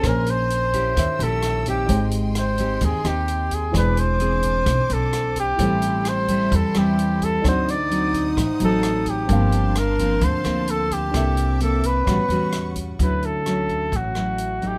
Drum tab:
HH |xxxxxxxx|xxxxxxxx|xxxxxxxx|xxxxxxxx|
SD |r---r-r-|--r--r--|r---r-r-|--r--r--|
BD |o--oo--o|o--oo--o|o--oo--o|o--oo--o|

HH |xxxxxxxx|xxxxxxxx|xxxxxxxx|xxxxxxxx|
SD |r---r-r-|--r--r--|r---r-r-|--r--r--|
BD |o--oo--o|o--oo--o|o--oo--o|o--oo--o|